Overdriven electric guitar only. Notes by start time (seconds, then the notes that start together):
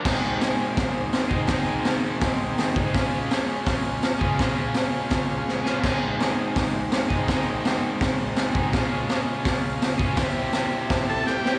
0.02 G#2 D#3 G#3
0.07 C4 D#4 G#4
1.29 G#3 C4 D#4 G#4
1.34 G#2 D#3
1.47 G#2 D#3 G#3 C4
1.52 D#4 G#4
2.75 G#3 C4 D#4 G#4
2.79 G#2 D#3
2.93 C#3 G#3 C#4
2.98 F4 G#4
4.18 C#4 F4 G#4
4.23 C#3 G#3
4.38 C#3 G#3 C#4 F4
4.44 G#4
5.64 C#4 F4 G#4
5.69 C#3 G#3
5.81 G#2 D#3 G#3 C4
5.86 D#4 G#4
7.09 G#3 C4 D#4 G#4
7.13 G#2 D#3
7.26 G#2 D#3 G#3 C4
7.31 D#4 G#4
8.52 G#3 C4 D#4 G#4
8.57 G#2 D#3
8.72 C#3 G#3 C#4 F4
8.77 G#4
9.98 C#4 F4 G#4
10.02 C#3 G#3
10.15 C3 G3 C4
10.20 E4 G4
11.43 C4 E4 G4
11.48 C3 G3